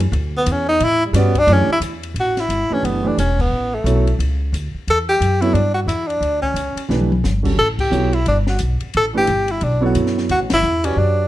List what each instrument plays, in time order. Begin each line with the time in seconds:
Already playing: upright bass F#2
0.00 ride
0.12 upright bass D2, ride
0.37 tenor saxophone B3
0.46 upright bass E2, hi-hat pedal, ride
0.52 tenor saxophone C#4
0.69 tenor saxophone D#4
0.80 upright bass A2, tenor saxophone E4, ride
1.06 tenor saxophone G3
1.13 upright bass G2, grand piano G3 C#4 F#4 B4 D5, snare, hi-hat pedal, ride
1.18 tenor saxophone B3
1.35 tenor saxophone D4, kick, ride
1.47 upright bass F#2, grand piano E3 A3 D4 G4 D5, ride
1.53 tenor saxophone C#4
1.69 tenor saxophone E4, muted upright bass stroke
1.80 upright bass E2, hi-hat pedal, ride
2.03 ride
2.14 upright bass A1, ride
2.20 tenor saxophone F#4
2.37 tenor saxophone E4, snare, ride
2.49 upright bass G1, hi-hat pedal, ride
2.70 grand piano E3 A3 D4 G4 B4, muted upright bass stroke
2.74 tenor saxophone C#4
2.83 upright bass F#1, tenor saxophone B3, ride
3.03 grand piano E3 A3 D4 G4 B4
3.07 tenor saxophone D4
3.17 upright bass E1, tenor saxophone C#4, hi-hat pedal, ride
3.39 tenor saxophone B3, kick, crash
3.50 upright bass A1
3.74 tenor saxophone A3
3.84 upright bass B1, grand piano F#3 B3 E4 A4 C#5, hi-hat pedal, ride
4.07 ride
4.19 upright bass C#2, ride
4.53 upright bass D2, hi-hat pedal, ride
4.74 muted upright bass stroke
4.87 upright bass E2, tenor saxophone A4, ride
5.09 tenor saxophone G4
5.21 upright bass F#2, hi-hat pedal, ride
5.41 grand piano F#3 B3 E4 A4 C#5, tenor saxophone E4, ride
5.54 upright bass G2, tenor saxophone D4, ride
5.74 tenor saxophone F#4
5.86 upright bass E2, tenor saxophone E4, hi-hat pedal, ride
6.07 tenor saxophone D4, ride
6.21 upright bass D2, ride
6.42 tenor saxophone C#4, kick
6.54 upright bass C#2, hi-hat pedal, ride
6.75 muted upright bass stroke, ride
6.88 upright bass B1, grand piano E3 A3 D4 G4 B4, snare
7.00 high tom
7.12 high tom
7.24 upright bass G1, snare, hi-hat pedal
7.43 grand piano D3 G3 C#4 F#4 A4, kick, crash
7.58 upright bass A1, tenor saxophone A4
7.79 tenor saxophone G4, kick, crash
7.90 upright bass B1, grand piano F#3 B3 E4 A4 C#5, hi-hat pedal
8.13 tenor saxophone E4, ride
8.26 upright bass G1, tenor saxophone D4, ride
8.47 tenor saxophone F#4, snare
8.59 upright bass B1, hi-hat pedal, ride
8.80 muted upright bass stroke, ride
8.94 upright bass A1, tenor saxophone A4, ride
9.13 grand piano E3 A3 D4 G4 B4, tenor saxophone G4
9.27 upright bass G1, hi-hat pedal, ride
9.48 tenor saxophone E4, ride
9.61 upright bass B1, tenor saxophone D4, ride
9.81 grand piano F#3 B3 E4 A4 C#5
9.86 tenor saxophone F#4
9.95 upright bass F#2, hi-hat pedal, ride
10.06 snare
10.18 snare
10.29 upright bass D2, tenor saxophone F#4, ride
10.40 upright bass A1
10.50 upright bass G1, tenor saxophone E4, snare, ride
10.62 upright bass E2, hi-hat pedal
10.84 tenor saxophone C#4, grand piano F#4 G4 B4 C#5 D5, ride
10.96 upright bass F#2, tenor saxophone D4